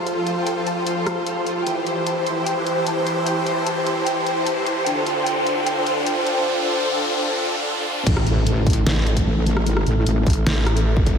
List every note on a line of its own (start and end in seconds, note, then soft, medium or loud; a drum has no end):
0.00 1.63 F3 medium
0.00 1.63 F4 medium
0.00 1.62 A4 medium
0.00 1.63 C5 medium
0.00 riser medium
0.07 0.13 F5 loud
0.07 closed hi-hat medium
0.17 0.23 F4 medium
0.27 0.33 F4 medium
0.27 closed hi-hat medium
0.37 0.43 F4 medium
0.47 0.53 G5 medium
0.47 closed hi-hat medium
0.57 0.63 F4 medium
0.66 0.73 A5 medium
0.66 closed hi-hat medium
0.77 0.83 F4 medium
0.86 0.93 F4 medium
0.86 closed hi-hat medium
0.97 1.03 F4 medium
1.06 1.13 C6 medium
1.06 cross-stick medium
1.06 closed hi-hat soft
1.17 1.23 F4 medium
1.26 1.33 F4 medium
1.26 closed hi-hat medium
1.46 1.53 F4 medium
1.46 closed hi-hat medium
1.56 1.63 F4 medium
1.66 4.83 E3 medium
1.66 4.83 E4 medium
1.66 4.83 G4 medium
1.66 4.83 C5 medium
1.66 1.73 G5 medium
1.66 closed hi-hat medium
1.76 1.83 C5 medium
1.86 1.93 C5 medium
1.86 closed hi-hat medium
1.97 2.03 C5 medium
2.06 2.13 A5 medium
2.06 closed hi-hat medium
2.17 2.23 C5 medium
2.27 2.33 C6 medium
2.27 closed hi-hat soft
2.37 2.43 C5 medium
2.47 2.53 G5 medium
2.47 closed hi-hat medium
2.57 2.63 C5 medium
2.66 2.73 C5 medium
2.66 closed hi-hat soft
2.77 2.83 C5 medium
2.87 2.93 A5 medium
2.87 closed hi-hat medium
2.97 3.03 C5 medium
3.07 3.13 C6 medium
3.07 closed hi-hat soft
3.17 3.23 C5 medium
3.27 3.33 G5 medium
3.27 closed hi-hat medium
3.37 3.43 C5 medium
3.46 3.53 C5 medium
3.46 closed hi-hat medium
3.57 3.63 C5 medium
3.66 3.73 A5 medium
3.66 closed hi-hat medium
3.77 3.83 C5 medium
3.86 3.93 C6 medium
3.86 closed hi-hat soft
3.97 4.03 C5 medium
4.06 4.13 G5 medium
4.06 closed hi-hat medium
4.17 4.23 C5 medium
4.26 4.33 C5 medium
4.26 closed hi-hat soft
4.37 4.43 C5 medium
4.47 4.53 A5 medium
4.47 closed hi-hat medium
4.57 4.63 C5 medium
4.67 4.73 C6 medium
4.67 closed hi-hat soft
4.77 4.83 C5 medium
4.86 8.03 D3 medium
4.86 8.03 D4 medium
4.86 8.03 F4 medium
4.86 8.03 A4 medium
4.86 4.93 G5 loud
4.86 closed hi-hat medium
4.97 5.03 C5 medium
5.06 5.13 C5 medium
5.06 closed hi-hat medium
5.17 5.23 C5 medium
5.26 5.33 G5 loud
5.26 closed hi-hat medium
5.37 5.43 C5 medium
5.46 5.53 C5 medium
5.46 closed hi-hat medium
5.57 5.63 C5 medium
5.66 5.73 G5 loud
5.66 closed hi-hat medium
5.77 5.83 C5 medium
5.86 5.93 C5 medium
5.86 closed hi-hat soft
5.96 6.03 C5 medium
6.06 6.13 G5 loud
6.06 closed hi-hat medium
6.17 6.23 C5 medium
6.26 6.33 C5 medium
6.26 closed hi-hat soft
6.37 6.43 C5 medium
8.07 8.85 A1 loud
8.07 11.18 A3 medium
8.07 11.18 E4 medium
8.07 11.18 A4 medium
8.07 kick loud
8.07 closed hi-hat medium
8.07 crash loud
8.07 impact medium
8.17 cross-stick medium
8.27 closed hi-hat medium
8.47 closed hi-hat medium
8.67 kick loud
8.67 closed hi-hat medium
8.70 closed hi-hat medium
8.73 closed hi-hat medium
8.87 9.25 A1 medium
8.87 snare loud
8.87 closed hi-hat medium
9.07 closed hi-hat medium
9.17 kick medium
9.17 closed hi-hat medium
9.26 9.67 A1 loud
9.47 closed hi-hat medium
9.57 cross-stick medium
9.67 9.85 G#1 loud
9.67 closed hi-hat medium
9.77 cross-stick medium
9.86 10.05 A1 loud
9.86 closed hi-hat medium
10.06 10.25 A1 medium
10.06 closed hi-hat medium
10.27 10.45 A1 loud
10.27 kick loud
10.27 closed hi-hat medium
10.30 closed hi-hat medium
10.33 closed hi-hat medium
10.47 11.02 A1 loud
10.47 snare loud
10.47 closed hi-hat medium
10.67 cross-stick medium
10.67 closed hi-hat medium
10.77 closed hi-hat medium
10.97 kick loud
11.02 11.18 G#1 loud
11.06 kick medium
11.06 closed hi-hat medium